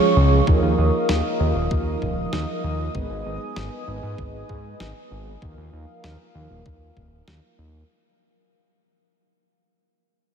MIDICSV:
0, 0, Header, 1, 5, 480
1, 0, Start_track
1, 0, Tempo, 618557
1, 366, Time_signature, 4, 2, 24, 8
1, 8026, End_track
2, 0, Start_track
2, 0, Title_t, "Analog synth pad"
2, 0, Program_c, 0, 89
2, 0, Note_on_c, 0, 68, 81
2, 0, Note_on_c, 0, 73, 76
2, 0, Note_on_c, 0, 77, 77
2, 0, Note_on_c, 0, 85, 91
2, 336, Note_off_c, 0, 77, 0
2, 348, Note_off_c, 0, 68, 0
2, 348, Note_off_c, 0, 73, 0
2, 348, Note_off_c, 0, 85, 0
2, 367, Note_on_c, 0, 77, 75
2, 368, Note_on_c, 0, 70, 83
2, 368, Note_on_c, 0, 75, 74
2, 368, Note_on_c, 0, 87, 88
2, 2268, Note_off_c, 0, 70, 0
2, 2268, Note_off_c, 0, 77, 0
2, 2286, Note_on_c, 0, 80, 75
2, 2287, Note_on_c, 0, 71, 82
2, 4187, Note_off_c, 0, 71, 0
2, 4187, Note_off_c, 0, 80, 0
2, 4207, Note_on_c, 0, 70, 82
2, 4207, Note_on_c, 0, 77, 73
2, 6096, Note_off_c, 0, 75, 0
2, 6096, Note_off_c, 0, 87, 0
2, 6107, Note_off_c, 0, 77, 0
2, 6108, Note_off_c, 0, 70, 0
2, 8026, End_track
3, 0, Start_track
3, 0, Title_t, "Analog polysynth"
3, 0, Program_c, 1, 90
3, 0, Note_on_c, 1, 53, 91
3, 0, Note_on_c, 1, 56, 84
3, 0, Note_on_c, 1, 61, 88
3, 0, Note_on_c, 1, 65, 85
3, 0, Note_on_c, 1, 68, 103
3, 338, Note_off_c, 1, 53, 0
3, 338, Note_off_c, 1, 56, 0
3, 338, Note_off_c, 1, 61, 0
3, 338, Note_off_c, 1, 65, 0
3, 338, Note_off_c, 1, 68, 0
3, 367, Note_on_c, 1, 53, 90
3, 367, Note_on_c, 1, 63, 82
3, 367, Note_on_c, 1, 65, 82
3, 368, Note_on_c, 1, 58, 82
3, 368, Note_on_c, 1, 70, 103
3, 1058, Note_off_c, 1, 53, 0
3, 1058, Note_off_c, 1, 58, 0
3, 1058, Note_off_c, 1, 63, 0
3, 1058, Note_off_c, 1, 65, 0
3, 1058, Note_off_c, 1, 70, 0
3, 1086, Note_on_c, 1, 53, 94
3, 1086, Note_on_c, 1, 58, 83
3, 1086, Note_on_c, 1, 65, 86
3, 1086, Note_on_c, 1, 70, 104
3, 1087, Note_on_c, 1, 63, 84
3, 2257, Note_off_c, 1, 53, 0
3, 2257, Note_off_c, 1, 65, 0
3, 2257, Note_off_c, 1, 70, 0
3, 2258, Note_off_c, 1, 58, 0
3, 2258, Note_off_c, 1, 63, 0
3, 2286, Note_on_c, 1, 59, 84
3, 2286, Note_on_c, 1, 63, 85
3, 2286, Note_on_c, 1, 68, 81
3, 2287, Note_on_c, 1, 56, 90
3, 2287, Note_on_c, 1, 71, 103
3, 2977, Note_off_c, 1, 63, 0
3, 2977, Note_off_c, 1, 68, 0
3, 2978, Note_off_c, 1, 56, 0
3, 2978, Note_off_c, 1, 59, 0
3, 2978, Note_off_c, 1, 71, 0
3, 3007, Note_on_c, 1, 63, 84
3, 3008, Note_on_c, 1, 56, 93
3, 3008, Note_on_c, 1, 59, 88
3, 3008, Note_on_c, 1, 68, 86
3, 3008, Note_on_c, 1, 71, 102
3, 4178, Note_off_c, 1, 56, 0
3, 4178, Note_off_c, 1, 59, 0
3, 4178, Note_off_c, 1, 63, 0
3, 4178, Note_off_c, 1, 68, 0
3, 4178, Note_off_c, 1, 71, 0
3, 4207, Note_on_c, 1, 53, 91
3, 4207, Note_on_c, 1, 58, 81
3, 4207, Note_on_c, 1, 63, 84
3, 4207, Note_on_c, 1, 65, 83
3, 4207, Note_on_c, 1, 70, 102
3, 4898, Note_off_c, 1, 53, 0
3, 4898, Note_off_c, 1, 58, 0
3, 4898, Note_off_c, 1, 63, 0
3, 4898, Note_off_c, 1, 65, 0
3, 4898, Note_off_c, 1, 70, 0
3, 4927, Note_on_c, 1, 53, 90
3, 4927, Note_on_c, 1, 58, 85
3, 4927, Note_on_c, 1, 63, 83
3, 4927, Note_on_c, 1, 65, 84
3, 4927, Note_on_c, 1, 70, 102
3, 6098, Note_off_c, 1, 53, 0
3, 6098, Note_off_c, 1, 58, 0
3, 6098, Note_off_c, 1, 63, 0
3, 6098, Note_off_c, 1, 65, 0
3, 6098, Note_off_c, 1, 70, 0
3, 8026, End_track
4, 0, Start_track
4, 0, Title_t, "Analog synth bass"
4, 0, Program_c, 2, 38
4, 127, Note_on_c, 2, 37, 92
4, 321, Note_off_c, 2, 37, 0
4, 368, Note_on_c, 2, 39, 96
4, 464, Note_off_c, 2, 39, 0
4, 487, Note_on_c, 2, 39, 95
4, 584, Note_off_c, 2, 39, 0
4, 607, Note_on_c, 2, 39, 100
4, 704, Note_off_c, 2, 39, 0
4, 847, Note_on_c, 2, 39, 83
4, 944, Note_off_c, 2, 39, 0
4, 1087, Note_on_c, 2, 39, 92
4, 1184, Note_off_c, 2, 39, 0
4, 1207, Note_on_c, 2, 27, 97
4, 1304, Note_off_c, 2, 27, 0
4, 1327, Note_on_c, 2, 39, 91
4, 1521, Note_off_c, 2, 39, 0
4, 1568, Note_on_c, 2, 27, 84
4, 1761, Note_off_c, 2, 27, 0
4, 1807, Note_on_c, 2, 39, 91
4, 1904, Note_off_c, 2, 39, 0
4, 2047, Note_on_c, 2, 39, 90
4, 2241, Note_off_c, 2, 39, 0
4, 2287, Note_on_c, 2, 32, 98
4, 2384, Note_off_c, 2, 32, 0
4, 2408, Note_on_c, 2, 32, 92
4, 2504, Note_off_c, 2, 32, 0
4, 2528, Note_on_c, 2, 32, 101
4, 2624, Note_off_c, 2, 32, 0
4, 2767, Note_on_c, 2, 32, 82
4, 2864, Note_off_c, 2, 32, 0
4, 3008, Note_on_c, 2, 32, 92
4, 3104, Note_off_c, 2, 32, 0
4, 3127, Note_on_c, 2, 44, 98
4, 3224, Note_off_c, 2, 44, 0
4, 3246, Note_on_c, 2, 32, 89
4, 3441, Note_off_c, 2, 32, 0
4, 3487, Note_on_c, 2, 44, 81
4, 3681, Note_off_c, 2, 44, 0
4, 3727, Note_on_c, 2, 32, 91
4, 3824, Note_off_c, 2, 32, 0
4, 3967, Note_on_c, 2, 32, 90
4, 4161, Note_off_c, 2, 32, 0
4, 4206, Note_on_c, 2, 39, 96
4, 4303, Note_off_c, 2, 39, 0
4, 4327, Note_on_c, 2, 39, 96
4, 4424, Note_off_c, 2, 39, 0
4, 4446, Note_on_c, 2, 39, 100
4, 4543, Note_off_c, 2, 39, 0
4, 4688, Note_on_c, 2, 39, 81
4, 4784, Note_off_c, 2, 39, 0
4, 4927, Note_on_c, 2, 39, 89
4, 5024, Note_off_c, 2, 39, 0
4, 5047, Note_on_c, 2, 27, 95
4, 5144, Note_off_c, 2, 27, 0
4, 5167, Note_on_c, 2, 39, 89
4, 5361, Note_off_c, 2, 39, 0
4, 5407, Note_on_c, 2, 27, 81
4, 5601, Note_off_c, 2, 27, 0
4, 5647, Note_on_c, 2, 39, 91
4, 5744, Note_off_c, 2, 39, 0
4, 5886, Note_on_c, 2, 39, 91
4, 6081, Note_off_c, 2, 39, 0
4, 8026, End_track
5, 0, Start_track
5, 0, Title_t, "Drums"
5, 367, Note_on_c, 9, 36, 108
5, 445, Note_off_c, 9, 36, 0
5, 846, Note_on_c, 9, 38, 115
5, 924, Note_off_c, 9, 38, 0
5, 1327, Note_on_c, 9, 36, 111
5, 1405, Note_off_c, 9, 36, 0
5, 1567, Note_on_c, 9, 36, 57
5, 1645, Note_off_c, 9, 36, 0
5, 1807, Note_on_c, 9, 38, 108
5, 1884, Note_off_c, 9, 38, 0
5, 2287, Note_on_c, 9, 36, 107
5, 2365, Note_off_c, 9, 36, 0
5, 2766, Note_on_c, 9, 38, 111
5, 2844, Note_off_c, 9, 38, 0
5, 3247, Note_on_c, 9, 36, 112
5, 3324, Note_off_c, 9, 36, 0
5, 3487, Note_on_c, 9, 36, 55
5, 3564, Note_off_c, 9, 36, 0
5, 3727, Note_on_c, 9, 38, 107
5, 3804, Note_off_c, 9, 38, 0
5, 4206, Note_on_c, 9, 36, 108
5, 4284, Note_off_c, 9, 36, 0
5, 4686, Note_on_c, 9, 38, 111
5, 4763, Note_off_c, 9, 38, 0
5, 5166, Note_on_c, 9, 36, 109
5, 5244, Note_off_c, 9, 36, 0
5, 5407, Note_on_c, 9, 36, 55
5, 5484, Note_off_c, 9, 36, 0
5, 5647, Note_on_c, 9, 38, 107
5, 5724, Note_off_c, 9, 38, 0
5, 8026, End_track
0, 0, End_of_file